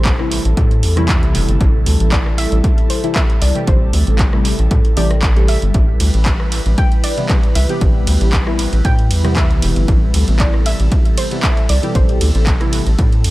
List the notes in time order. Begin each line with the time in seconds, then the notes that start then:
Already playing: A1 C3 E3 G3 A3 E4 G4 A4 C5
0.05 kick, clap, closed hi-hat
0.19 C3 E3 G3 A3 E4, cross-stick
0.32 open hi-hat
0.45 A1, closed hi-hat
0.57 A2, kick, closed hi-hat
0.71 closed hi-hat
0.83 E2, open hi-hat
0.96 C3 E3 G3 A3 E4, cross-stick, closed hi-hat
1.09 kick, clap, closed hi-hat
1.23 C2, closed hi-hat
1.35 E1, open hi-hat
1.49 G1, closed hi-hat
1.61 A1, kick, closed hi-hat
1.86 D2, open hi-hat
2.00 A1, closed hi-hat
2.12 D5, kick, clap, closed hi-hat
2.26 cross-stick
2.38 E5, open hi-hat
2.52 A1, closed hi-hat
2.64 kick, closed hi-hat
2.78 closed hi-hat
2.90 C5, open hi-hat
3.03 C3 E3 G3 A3 E4, closed hi-hat
3.15 E5, kick, cross-stick, clap, closed hi-hat
3.30 closed hi-hat
3.42 C2 D5, open hi-hat
3.55 C3 E3 G3 A3 G4, closed hi-hat
3.67 A1 C5, kick, closed hi-hat
3.93 D2, open hi-hat
4.07 A1, closed hi-hat
4.19 kick, clap, closed hi-hat
4.33 C3 E3 G3 A3 E4, cross-stick
4.45 open hi-hat
4.59 A1, closed hi-hat
4.71 A2, kick, closed hi-hat
4.85 closed hi-hat
4.96 A1 C3 E3 G3 A3 G4 D5, open hi-hat
5.11 cross-stick, closed hi-hat
5.22 kick, clap, closed hi-hat
5.36 C3 E3 G3 A3 A4, closed hi-hat
5.48 E5, open hi-hat
5.62 G1, closed hi-hat
5.74 A1 E4 B4, kick, closed hi-hat
6.00 D2, open hi-hat, ride
6.14 A1, closed hi-hat
6.26 kick, clap, closed hi-hat
6.40 cross-stick
6.52 open hi-hat, ride
6.66 A1, closed hi-hat
6.78 G5, kick, closed hi-hat
6.92 closed hi-hat
7.04 D5, open hi-hat, ride
7.17 C3 E3 G3 B3 E4, closed hi-hat
7.29 kick, cross-stick, clap, closed hi-hat
7.43 closed hi-hat
7.55 C2 E5, open hi-hat, ride
7.69 C3 E3 G3 B3 G4, closed hi-hat
7.81 A1, kick, closed hi-hat
8.07 D2, open hi-hat, ride
8.21 A1, closed hi-hat
8.33 kick, clap, closed hi-hat
8.47 C3 E3 G3 B3 E4, cross-stick
8.59 open hi-hat, ride
8.73 A1, closed hi-hat
8.85 A2 G5, kick, closed hi-hat
8.99 closed hi-hat
9.11 E2, open hi-hat, ride
9.24 C3 E3 G3 B3 E4, cross-stick, closed hi-hat
9.36 E5, kick, clap, closed hi-hat
9.50 C2, closed hi-hat
9.62 E1, open hi-hat, ride
9.76 G1, closed hi-hat
9.88 A1 A4, kick, closed hi-hat
10.14 D2, open hi-hat, ride
10.28 A1, closed hi-hat
10.40 D5, kick, clap, closed hi-hat
10.54 cross-stick
10.66 E5, open hi-hat, ride
10.80 A1, closed hi-hat
10.92 kick, closed hi-hat
11.05 closed hi-hat
11.18 C5, open hi-hat, ride
11.31 C3 E3 G3 B3 E4, closed hi-hat
11.43 E5, kick, cross-stick, clap, closed hi-hat
11.57 closed hi-hat
11.69 C2 D5, open hi-hat, ride
11.82 B2 C3 E3 G3 G4, closed hi-hat
11.95 A1 C5, kick, closed hi-hat
12.09 closed hi-hat
12.21 D2, open hi-hat, ride
12.35 A1, closed hi-hat
12.47 kick, clap, closed hi-hat
12.60 C3 E3 G3 B3 E4, cross-stick, closed hi-hat
12.73 open hi-hat, ride
12.87 A1, closed hi-hat
12.99 A2, kick, closed hi-hat
13.12 closed hi-hat
13.24 E2, open hi-hat, ride